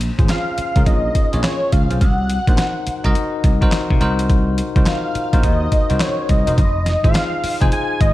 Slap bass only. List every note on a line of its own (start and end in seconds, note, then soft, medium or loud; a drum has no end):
0.19 0.27 G#1 medium
0.58 muted slap bass stroke soft
0.76 0.84 C#2 medium
0.87 1.09 A#1 medium
1.34 1.42 A#1 medium
1.73 1.87 C#2 medium
1.91 1.99 B1 medium
2.01 2.38 C2 loud
2.48 2.56 A#1 medium
2.87 muted slap bass stroke soft
3.05 3.13 C2 medium
3.44 3.66 C2 loud
3.91 3.99 C3 loud
4.01 4.60 C2 loud
4.76 4.84 C2 medium
5.15 muted slap bass stroke soft
5.33 5.42 A#1 medium
5.44 5.66 D#2 medium
5.90 5.99 C2 medium
6.29 6.44 C2 medium
6.47 6.56 E1 medium
6.58 6.94 F1 loud
7.04 7.13 G#1 loud
7.44 muted slap bass stroke soft
7.61 7.70 F1 medium
8.01 8.14 G#1 medium